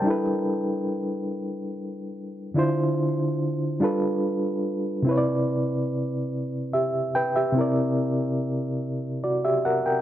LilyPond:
\new Staff \with { instrumentName = "Reed electric piano" } { \time 6/8 \key g \major \tempo 4. = 48 << { <bes' g''>16 r2 r8. | r2. | r2 <g' e''>8 <b' g''>16 <g' e''>16~ | <g' e''>16 r4. r16 <fis' d''>16 <g' e''>16 <bes' fis''>16 <bes' g''>16 | } \\ { <g d' e' a' b'>2. | <d d' e' f' c''>4. <g d' f' a' b'>4. | <c c' e' b' cis'' d''>2. | <c c' e' bes' d''>2. | } >> }